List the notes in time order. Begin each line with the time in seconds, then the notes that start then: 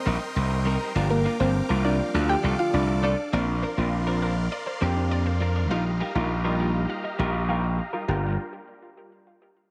Already playing: A#4 D#5 G5 C6
0.06 A#1 G3 C4 D#4 A#4
0.21 muted clean electric guitar stroke
0.36 C2, muted clean electric guitar stroke
0.51 muted clean electric guitar stroke
0.65 G3 C4 D#4 A#4
0.80 G3 C4 D#4 A#4
0.95 G1 F3 G3 A#3 D4 F4 A#4 F5 D6
1.10 A#3 A#4, muted clean electric guitar stroke
1.25 A#3 D4 F4 A#4
1.39 G1 F3 G3 A#3 C4 D4 F4 G4 A#4 C5
1.54 muted clean electric guitar stroke
1.69 C2 F3 G3 A#3 D4 F4 A#4
1.84 A#3 D4 F4 A#4 D5
1.99 muted clean electric guitar stroke
2.14 D2 D3 F3 A3 D4 F4 A4 D5 D6, muted clean electric guitar stroke
2.29 G4 G5, muted clean electric guitar stroke
2.43 C2 A3 D4 F4 A4
2.59 F4 F5, muted clean electric guitar stroke
2.73 C2 D4 D5, muted clean electric guitar stroke
2.88 muted clean electric guitar stroke
3.03 A3 D4 F4 A4 D5
3.18 muted clean electric guitar stroke
3.33 A#1 F3 A#3 C4 D4 F4 A#4 D5 F5 C6
3.48 muted clean electric guitar stroke
3.62 F3 C4 D4 A#4
3.77 A#1 F3 A#3 C4 D4 F4 A#4
3.93 muted clean electric guitar stroke
4.07 F3 C4 D4 A#4 C5
4.22 F3 C4 D4 A#4
4.52 D5, muted clean electric guitar stroke
4.66 C5, muted clean electric guitar stroke
4.81 F2 F3 A#3 C4 D4 G4 A#4
4.96 D4, muted clean electric guitar stroke
5.11 D5, muted clean electric guitar stroke
5.26 C5, muted clean electric guitar stroke
5.40 F3 C4 D4 A#4
5.55 F3 C4 D4 A#4
5.70 A#1 G3 A#3 D#4 F4 G4 A#4 D#5 F5 A#5
5.85 muted clean electric guitar stroke
6.00 G3 D#4 F4 G4 A#4
6.15 A#1 G3 A#3 D#4 F4 A#4
6.30 muted clean electric guitar stroke
6.44 G3 A#3 D#4 F4 A#4 D#5
6.59 G3 D#4 F4 G4 A#4
6.74 muted clean electric guitar stroke
6.89 F5, muted clean electric guitar stroke
7.04 D#5, muted clean electric guitar stroke
7.19 A#1 G3 D#4 F4 G4 A#4 F5
7.34 F4, muted clean electric guitar stroke
7.48 G3 D#4 F4 A#4 F5 G5
7.64 D#5, muted clean electric guitar stroke
7.78 A#5, muted clean electric guitar stroke
7.93 G3 D#4 F4 A#4
8.08 G1 G3 A#3 D4 F4 G4 A#4 G5